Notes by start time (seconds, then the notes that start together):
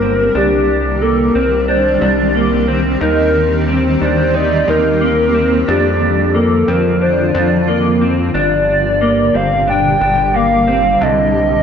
Already playing: G1 D3 G3 A#3 G4 A#4
0.02 C4
0.35 C2 D#3 C4 D4 G4
1.01 A#3 A4
1.35 C2 C4 A#4
1.68 D4 C5
2.01 C2 D4
2.35 A#3
2.68 C4
3.01 D#2 A#3 D#4 A#4
3.68 C4
4.01 D#2 D4 C5
4.34 D#4 D5
4.68 D#2 D#4 A#4
5.01 A#3
5.34 C4
5.68 F2 D3 F3 D4 F4 G4
6.34 A#3 A4
6.68 F2 C4 A#4
7.01 D4 C5
7.34 F2 D4
7.68 A#3
8.01 C4
8.34 G1 A#2 D3 G3 D4 G4 D5
9.01 A#3
9.34 G1 C4 F5
9.67 D4 G5
10.01 G1 D4
10.34 A#3 F5
10.67 C4
11.01 C2 C3 D3 G4 D#5